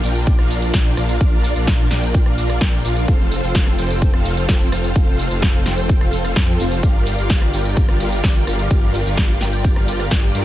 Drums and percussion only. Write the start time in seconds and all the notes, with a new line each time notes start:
0.03 open hi-hat, tambourine
0.15 closed hi-hat, tambourine
0.27 kick, closed hi-hat, tambourine
0.39 cross-stick
0.50 open hi-hat, tambourine
0.62 closed hi-hat, tambourine
0.74 kick, snare, closed hi-hat, tambourine
0.86 closed hi-hat
0.97 cross-stick, open hi-hat, tambourine
1.09 closed hi-hat, tambourine
1.21 kick, closed hi-hat, tambourine
1.32 closed hi-hat
1.44 open hi-hat, tambourine
1.56 closed hi-hat, tambourine
1.67 kick, snare, closed hi-hat, tambourine
1.91 snare, open hi-hat, tambourine
2.03 closed hi-hat, tambourine
2.14 kick, closed hi-hat, tambourine
2.26 cross-stick
2.38 open hi-hat, tambourine
2.50 cross-stick, closed hi-hat, tambourine
2.61 kick, snare, closed hi-hat, tambourine
2.73 closed hi-hat
2.85 open hi-hat, tambourine
2.96 closed hi-hat, tambourine
3.08 kick, closed hi-hat, tambourine
3.20 closed hi-hat
3.32 open hi-hat, tambourine
3.43 closed hi-hat, tambourine
3.55 kick, snare, closed hi-hat, tambourine
3.67 cross-stick
3.78 open hi-hat, tambourine
3.90 closed hi-hat, tambourine
4.02 kick, closed hi-hat, tambourine
4.14 cross-stick
4.25 open hi-hat, tambourine
4.37 closed hi-hat, tambourine
4.49 kick, snare, closed hi-hat, tambourine
4.61 closed hi-hat
4.72 cross-stick, open hi-hat, tambourine
4.84 closed hi-hat, tambourine
4.96 kick, closed hi-hat, tambourine
5.07 closed hi-hat
5.19 open hi-hat, tambourine
5.31 closed hi-hat, tambourine
5.42 kick, snare, closed hi-hat, tambourine
5.66 snare, open hi-hat, tambourine
5.78 closed hi-hat, tambourine
5.89 kick, closed hi-hat, tambourine
6.01 cross-stick
6.13 open hi-hat, tambourine
6.25 cross-stick, closed hi-hat, tambourine
6.36 kick, snare, closed hi-hat, tambourine
6.48 closed hi-hat
6.60 open hi-hat, tambourine
6.71 closed hi-hat, tambourine
6.83 kick, closed hi-hat, ride, tambourine
6.95 closed hi-hat
7.07 open hi-hat, ride, tambourine
7.18 closed hi-hat, tambourine
7.30 kick, snare, closed hi-hat, ride, tambourine
7.42 cross-stick
7.53 open hi-hat, ride, tambourine
7.65 closed hi-hat, tambourine
7.77 kick, closed hi-hat, ride, tambourine
7.89 cross-stick
8.00 open hi-hat, ride, tambourine
8.12 closed hi-hat, tambourine
8.24 kick, snare, closed hi-hat, ride, tambourine
8.36 closed hi-hat
8.47 cross-stick, open hi-hat, ride, tambourine
8.59 closed hi-hat, tambourine
8.71 kick, closed hi-hat, ride, tambourine
8.82 closed hi-hat
8.94 open hi-hat, ride, tambourine
9.06 closed hi-hat, tambourine
9.17 kick, snare, closed hi-hat, ride, tambourine
9.41 snare, open hi-hat, ride, tambourine
9.53 closed hi-hat, tambourine
9.64 kick, closed hi-hat, ride, tambourine
9.76 cross-stick
9.88 open hi-hat, ride, tambourine
10.00 cross-stick, closed hi-hat, tambourine
10.11 kick, snare, closed hi-hat, ride, tambourine
10.23 closed hi-hat
10.35 open hi-hat, ride, tambourine